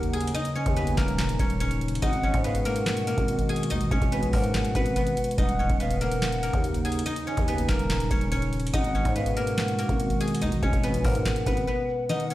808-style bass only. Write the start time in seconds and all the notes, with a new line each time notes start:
Already playing: D#2
0.66 D#2
0.98 D#1
1.39 D#1
2.02 G#1
2.34 G#2
3.18 G#1
3.70 D#2
3.81 G#1
3.91 G#1
4.02 G#1
4.23 A#1
4.33 G#2
4.75 G#1
5.38 D#1
5.70 D#1
6.53 D#2
7.37 D#2
7.69 D#1
8.11 D#1
8.74 G#1
9.05 G#2
9.89 G#1
10.42 D#2
10.52 G#1
10.62 G#1
10.73 G#1
10.94 A#1
11.05 G#2
11.46 G#1